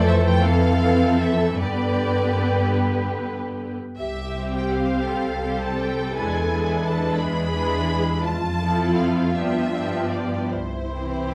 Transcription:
0.00 1.57 F2 medium
0.00 1.57 E3 medium
0.00 0.45 A3 medium
0.00 0.42 A4 medium
0.00 1.56 A4 medium
0.00 0.41 C5 medium
0.07 0.25 E5 medium
0.25 0.43 G5 medium
0.43 1.61 C4 medium
0.43 1.58 A4 medium
0.43 1.21 F5 medium
1.20 1.60 E5 medium
1.59 3.77 G2 medium
1.59 3.77 D3 medium
1.59 3.77 B3 medium
1.59 3.76 G4 medium
1.59 3.76 B4 medium
1.59 3.35 B4 medium
1.59 2.76 D5 medium
3.98 4.96 C2 medium
3.98 5.05 G4 medium
3.98 4.50 E5 medium
4.36 5.43 G3 soft
4.36 5.43 C4 soft
4.36 5.42 G4 soft
4.36 5.43 C5 soft
4.54 4.72 G5 medium
4.73 5.62 F5 medium
5.09 6.03 C2 medium
5.09 7.20 A4 medium
5.45 6.15 G3 soft
5.45 6.15 C4 soft
5.45 6.14 G4 soft
5.45 6.14 C5 soft
5.64 5.80 A5 medium
5.80 6.16 G5 medium
6.14 6.50 D4 soft
6.14 6.47 E4 soft
6.14 6.48 B4 soft
6.14 6.84 G#5 medium
6.18 7.09 E2 medium
6.18 6.51 G#3 soft
6.49 7.53 G#3 soft
6.49 7.53 D4 soft
6.49 7.51 E4 soft
6.49 7.52 B4 soft
6.86 7.20 A5 medium
7.18 8.12 E2 medium
7.18 8.25 G#4 medium
7.18 8.23 B5 medium
7.54 8.24 G#3 soft
7.54 8.24 D4 soft
7.54 8.23 E4 soft
7.54 8.22 B4 soft
8.23 9.23 F2 medium
8.23 10.47 F4 medium
8.23 8.96 A5 medium
8.61 9.35 F3 soft
8.61 9.35 C4 soft
8.61 9.34 E4 soft
8.61 9.34 A4 soft
8.97 9.34 F5 medium
9.35 10.37 G2 medium
9.35 9.72 F3 soft
9.35 9.72 B3 soft
9.35 9.72 D4 soft
9.35 9.72 G4 soft
9.35 10.10 E5 medium
9.73 10.49 F3 soft
9.73 10.49 B3 soft
9.73 10.50 D4 soft
9.73 10.50 G4 soft
10.09 10.50 D5 medium
10.50 11.34 C2 soft
10.50 11.34 E4 soft
10.50 11.34 C5 medium
10.93 11.34 E3 soft
10.93 11.34 C4 soft
10.93 11.34 E4 soft
10.93 11.34 G4 soft

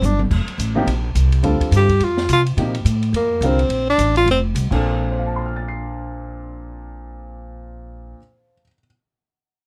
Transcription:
0.02 0.30 G1 medium
0.02 0.21 D4 medium
0.02 hi-hat pedal medium
0.02 high tom soft
0.19 high tom medium
0.31 0.46 F1 medium
0.31 kick medium
0.31 crash medium
0.46 muted upright bass stroke soft
0.46 ride soft
0.58 0.86 A1 medium
0.58 hi-hat pedal medium
0.58 ride medium
0.75 0.86 C3 medium
0.75 0.86 F3 medium
0.75 0.86 A#3 medium
0.75 0.86 D#4 medium
0.75 0.87 G4 medium
0.86 1.14 A#1 medium
0.86 ride medium
1.15 1.42 C2 medium
1.15 hi-hat pedal medium
1.15 ride medium
1.32 ride soft
1.43 1.59 D2 medium
1.43 1.85 D3 medium
1.43 1.85 G3 medium
1.43 1.85 C4 medium
1.43 1.86 F4 medium
1.43 1.86 A4 medium
1.43 ride medium
1.60 muted upright bass stroke soft
1.60 kick soft
1.60 ride soft
1.71 1.99 G2 medium
1.71 hi-hat pedal medium
1.71 ride medium
1.76 2.06 G4 medium
1.89 kick soft
1.89 ride soft
2.00 2.28 F2 medium
2.00 ride medium
2.04 2.31 F4 medium
2.17 snare soft
2.29 2.56 C3 loud
2.29 2.42 F4 medium
2.29 hi-hat pedal medium
2.29 ride medium
2.46 ride soft
2.57 2.84 A#2 medium
2.57 2.72 C3 medium
2.57 2.73 F3 medium
2.57 2.73 A#3 medium
2.57 2.73 D#4 medium
2.57 2.73 G4 medium
2.57 ride medium
2.75 ride soft
2.85 3.12 A2 medium
2.85 hi-hat pedal medium
2.85 ride medium
3.03 ride soft
3.13 3.40 F2 medium
3.13 3.47 A#3 medium
3.13 ride medium
3.41 3.68 C2 medium
3.41 3.58 D3 medium
3.41 3.58 G3 medium
3.41 3.58 C4 medium
3.41 3.58 F4 medium
3.41 3.58 A#4 medium
3.41 hi-hat pedal soft
3.41 ride medium
3.45 3.89 C4 medium
3.59 ride soft
3.69 3.97 A#1 medium
3.69 ride medium
3.90 4.15 D4 medium
3.98 4.25 A1 medium
3.98 hi-hat pedal medium
3.98 ride medium
4.16 4.27 F4 loud
4.16 ride soft
4.26 4.54 F1 medium
4.26 ride medium
4.31 4.40 C4 medium
4.55 4.71 C2 medium
4.55 hi-hat pedal medium
4.55 ride medium
4.71 8.12 A#1 medium
4.71 8.16 A#2 medium
4.71 8.17 F3 medium
4.71 8.18 C4 medium
4.71 8.18 D4 medium
4.71 8.19 A4 medium
4.71 kick soft
4.71 crash medium
5.11 8.52 C5 soft
5.19 8.60 F5 soft
5.27 8.63 A5 soft
5.36 8.68 C6 soft
5.46 8.73 F6 soft
5.56 8.78 A6 soft
5.68 8.84 C7 soft

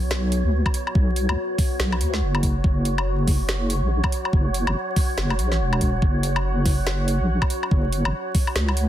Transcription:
0.00 0.43 B1 loud
0.00 2.60 B3 medium
0.00 8.89 F#4 medium
0.00 2.60 C#5 medium
0.00 8.89 C#5 medium
0.11 snare loud
0.32 closed hi-hat medium
0.45 0.64 D2 loud
0.66 kick medium
0.66 low woodblock medium
0.74 closed hi-hat medium
0.87 low woodblock medium
0.95 1.27 B1 loud
0.95 kick loud
1.16 closed hi-hat medium
1.29 1.37 C#2 loud
1.29 low woodblock medium
1.58 kick loud
1.58 open hi-hat medium
1.80 2.02 B1 loud
1.80 snare loud
1.92 low woodblock medium
2.01 2.23 D2 medium
2.01 closed hi-hat medium
2.14 snare soft
2.22 2.63 F#1 medium
2.35 low woodblock medium
2.43 kick medium
2.43 closed hi-hat medium
2.64 3.81 F#1 loud
2.64 8.89 C#5 medium
2.64 8.89 F#5 medium
2.64 kick loud
2.85 closed hi-hat medium
2.98 low woodblock medium
3.28 kick loud
3.28 open hi-hat medium
3.49 snare loud
3.70 closed hi-hat medium
3.82 4.02 A#1 medium
4.04 kick medium
4.04 low woodblock medium
4.12 closed hi-hat medium
4.25 low woodblock medium
4.33 4.65 F#1 loud
4.33 kick loud
4.54 closed hi-hat medium
4.67 4.75 G1 loud
4.67 low woodblock medium
4.96 kick loud
4.96 open hi-hat medium
5.18 5.40 F#1 loud
5.18 snare loud
5.30 low woodblock medium
5.39 5.62 A#1 medium
5.39 closed hi-hat medium
5.52 snare soft
5.60 6.01 E1 medium
5.73 low woodblock medium
5.81 kick medium
5.81 closed hi-hat medium
6.02 7.19 F#1 loud
6.02 kick loud
6.23 closed hi-hat medium
6.36 low woodblock medium
6.66 kick loud
6.66 open hi-hat loud
6.87 snare loud
7.08 closed hi-hat medium
7.21 7.40 A#1 loud
7.42 kick medium
7.42 low woodblock medium
7.50 closed hi-hat medium
7.63 low woodblock medium
7.71 8.03 F#1 loud
7.71 kick loud
7.92 closed hi-hat medium
8.05 8.13 G1 loud
8.05 low woodblock medium
8.35 kick loud
8.35 open hi-hat loud
8.47 low woodblock medium
8.56 8.88 C#2 medium
8.56 snare loud
8.69 low woodblock medium
8.77 closed hi-hat medium

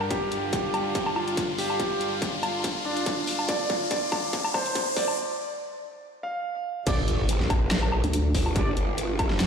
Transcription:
0.00 5.14 G2 medium
0.00 5.14 D3 medium
0.00 5.14 D4 medium
0.00 riser medium
0.00 low woodblock soft
0.11 5.14 F4 medium
0.11 0.42 G4 loud
0.11 kick loud
0.11 closed hi-hat medium
0.32 closed hi-hat soft
0.53 1.08 G4 medium
0.53 kick loud
0.53 closed hi-hat medium
0.74 closed hi-hat soft
0.74 low woodblock medium
0.95 kick loud
0.95 closed hi-hat medium
1.06 low woodblock medium
1.16 1.48 F4 medium
1.16 low woodblock medium
1.28 closed hi-hat soft
1.37 kick loud
1.37 closed hi-hat medium
1.58 2.14 G4 medium
1.58 open hi-hat medium
1.70 low woodblock medium
1.80 kick loud
1.80 closed hi-hat medium
2.01 closed hi-hat soft
2.22 kick loud
2.22 closed hi-hat medium
2.43 closed hi-hat soft
2.43 low woodblock medium
2.64 kick loud
2.64 closed hi-hat medium
2.85 3.41 D4 medium
2.97 closed hi-hat soft
3.06 kick loud
3.06 closed hi-hat medium
3.27 open hi-hat medium
3.39 low woodblock medium
3.49 3.80 D5 loud
3.49 kick loud
3.49 closed hi-hat medium
3.70 kick loud
3.70 closed hi-hat medium
3.91 4.46 D5 medium
3.91 kick loud
3.91 closed hi-hat medium
4.12 kick loud
4.12 closed hi-hat medium
4.12 low woodblock medium
4.33 kick loud
4.33 closed hi-hat medium
4.45 low woodblock medium
4.54 4.86 C5 medium
4.54 kick loud
4.54 low woodblock medium
4.66 closed hi-hat medium
4.75 kick loud
4.75 closed hi-hat medium
4.96 5.52 D5 loud
4.96 kick loud
4.96 open hi-hat medium
5.08 low woodblock medium
6.23 6.79 F5 medium
6.87 7.27 G1 medium
6.87 7.00 D4 medium
6.87 7.00 G4 medium
6.87 7.00 D5 medium
6.87 kick loud
6.87 closed hi-hat medium
6.87 crash loud
6.87 impact medium
7.08 closed hi-hat medium
7.29 7.38 G1 loud
7.29 closed hi-hat medium
7.40 8.02 A#1 loud
7.40 snare soft
7.50 kick loud
7.50 closed hi-hat medium
7.50 low woodblock medium
7.71 snare loud
7.71 closed hi-hat medium
7.83 low woodblock medium
7.92 low woodblock medium
8.04 8.33 D2 loud
8.04 closed hi-hat medium
8.13 closed hi-hat medium
8.35 8.75 G1 loud
8.35 kick medium
8.35 open hi-hat medium
8.46 low woodblock medium
8.56 8.69 D4 medium
8.56 8.69 G4 medium
8.56 8.69 D5 medium
8.56 kick loud
8.56 closed hi-hat medium
8.77 9.39 G1 loud
8.77 closed hi-hat medium
8.98 closed hi-hat medium
9.19 kick loud
9.19 closed hi-hat medium
9.19 low woodblock medium
9.30 snare soft
9.40 9.47 G2 medium
9.40 snare loud
9.40 closed hi-hat medium

